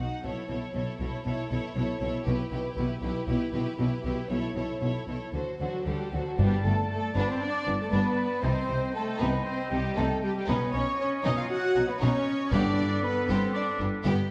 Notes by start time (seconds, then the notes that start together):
0.00 D#4 F#4 F#5
0.23 B1 B2 E4 A4 C#5
0.49 B1 B2 E4 A4 C#5
0.73 B1 B2 E4 A4 C#5
0.98 B1 B2 E4 A4 C#5
1.23 B1 B2 E4 A4 C#5
1.49 B1 B2 E4 A4 C#5
1.72 B1 B2 A4
1.76 E4 C#5
1.99 B1 B2 E4 A4 C#5
2.24 B1 B2 E4 G4 B4
2.50 B1 B2 E4 G4 B4
2.74 B1 E4 G4 B4
2.78 B2
3.00 B1 B2 E4 G4 B4
3.27 B1 B2 E4 G4 B4
3.52 B1 B2 E4 G4 B4
3.78 B1 B2 E4 G4 B4
4.03 B1 B2 E4 G4 B4
4.29 B1 B2 E4 A4 C#5
4.55 B1 B2 E4 A4 C#5
4.81 B1 B2 E4 A4 C#5
5.07 B1 B2 E4 A4 C#5
5.32 D2 D3 F#4 A4 C5
5.59 D2 D3 F#3 F#4 A4 C5 F#5
5.85 D2 D3 G3 F#4 G4 A4 C5 G5
6.12 D2 D3 F#3 F#4 A4 C5 F#5
6.26 F#3 F#4 F#5
6.38 G1 G2 G3 B3 D4 G4 D5 G5 A5
6.63 G1 G2 A3 B3 D4 A4 A5
6.89 A3 A4 A5
7.15 G1 G2 B3 D4 B4 B5
7.27 C4 C5 C6
7.41 D4 D5 D6
7.67 G1 G2 B3 D4
7.79 A3 A4 A5
7.92 G1 G2 B3 D4 B4 B5
8.41 C2 C3 C4 D#4 C5 D#5 G5 C6
8.68 C2 C3 C4 D#4
8.94 A3 A4 A5
9.19 C2 C3 B3 C4 D#4 B4 B5
9.44 C4 C5 C6
9.68 C2 C3 G3 C4 D#4 G4 G5
9.73 G3
9.95 C2 C3 A3 C4 D#4 A4 A5
10.21 G3 G4 G5
10.35 G3 G4 G5
10.47 B1 B2 B3 C#4 D#4 B4 C#5 D#5 B5
10.72 B1 B2 C#4 D#4 C#5 C#6
10.98 C#4 C#5 C#6
11.22 B1 B2 C#4 D#4 D#5 D#6
11.35 F4 F5 F6
11.39 F4
11.49 F#4 F#5 F#6
11.76 B1 B2 C#4 D#4
11.87 B3 B4 B5
12.00 B1 B2 C#4 D#4 C#5 C#6
12.51 G1 G2 B3 D4 G4 A4 B4 D5 D6
12.78 G1 G2 B3 G4
13.03 B3 B4 B5
13.28 G1 G2 B3 C4 G4 C5 C6
13.53 D4 D5 D6
13.80 G1 G2 B3 G4
14.04 G1 G2 B3 G4